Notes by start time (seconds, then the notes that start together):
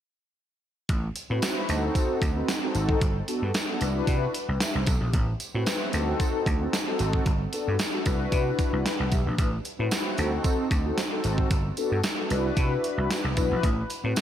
0.89 A1, kick, closed hi-hat
1.16 closed hi-hat, tambourine
1.29 A2 C4 E4 F#4 B4
1.42 snare, closed hi-hat, tambourine
1.68 D2 C4 D#4 F#4 A4, closed hi-hat, tambourine
1.95 kick, closed hi-hat, tambourine
2.22 D2, kick, closed hi-hat, tambourine
2.36 C4 D#4 F#4 B4
2.49 snare, closed hi-hat, tambourine
2.62 C4 D#4 F#4 A4
2.75 G#1, closed hi-hat, tambourine
2.89 kick
3.02 G1, kick, closed hi-hat
3.28 B3 D4 F#4 A4, closed hi-hat, tambourine
3.42 G2
3.54 snare, closed hi-hat, tambourine
3.69 B3 D4 F#4 A4
3.81 C2 D4 E4 F#4 B4, closed hi-hat, tambourine
4.07 C3, kick, closed hi-hat, tambourine
4.34 closed hi-hat, tambourine
4.48 C2 B4 G5
4.60 G4 E5, snare, closed hi-hat, tambourine
4.75 C2 E4 C5
4.87 B1 C4 A4, kick, closed hi-hat, tambourine
5.01 A#1 B3 G4
5.13 A1, kick, closed hi-hat
5.40 closed hi-hat, tambourine
5.54 A2 C4 E4 F#4 B4
5.66 snare, closed hi-hat, tambourine
5.93 D2 C4 D#4 F#4 A4, closed hi-hat, tambourine
6.20 kick, closed hi-hat, tambourine
6.46 D2, kick, closed hi-hat
6.60 C4 D#4 F#4 A4
6.73 snare, closed hi-hat, tambourine
6.87 C4 D#4 F#4 A4
6.99 G#1, closed hi-hat, tambourine
7.13 kick
7.26 G1, kick, closed hi-hat
7.53 B3 D4 F#4 A4, closed hi-hat, tambourine
7.68 G2
7.79 snare, closed hi-hat, tambourine
7.93 B3 D4 F#4 A4
8.06 C2 D4 E4 F#4 B4, kick, closed hi-hat, tambourine
8.32 C3, kick, closed hi-hat, tambourine
8.59 kick, closed hi-hat, tambourine
8.73 C2
8.86 B4 G5, snare, closed hi-hat, tambourine
9.00 C2 A4 F#5
9.12 B1 G4 E5, kick, closed hi-hat, tambourine
9.26 A#1 D4 B4
9.38 A1, kick, closed hi-hat, tambourine
9.65 closed hi-hat, tambourine
9.78 A2 C4 E4 F#4 B4
9.91 snare, closed hi-hat, tambourine
10.18 D2 C4 D#4 F#4 A4, closed hi-hat, tambourine
10.44 kick, closed hi-hat, tambourine
10.71 D2, kick, closed hi-hat, tambourine
10.85 C4 D#4 F#4 A4
10.98 snare, closed hi-hat, tambourine
11.12 C4 D#4 F#4 A4
11.24 G#1, closed hi-hat, tambourine
11.38 kick
11.50 G1, kick, closed hi-hat, tambourine
11.77 B3 D4 F#4 A4, closed hi-hat, tambourine
11.92 G2
12.04 snare, closed hi-hat, tambourine
12.18 B3 D4 F#4 A4
12.30 C2 D4 D#4 F#4 B4, closed hi-hat, tambourine
12.37 E4
12.57 C3, kick, closed hi-hat, tambourine
12.84 closed hi-hat
12.98 C2
13.10 snare, closed hi-hat, tambourine
13.24 C2
13.36 B1 D4 E4 F#4 B4, kick, closed hi-hat, tambourine
13.51 A#1
13.63 A1, kick, closed hi-hat
13.90 closed hi-hat, tambourine
14.03 A2 C4 E4 F#4 B4
14.16 snare, closed hi-hat, tambourine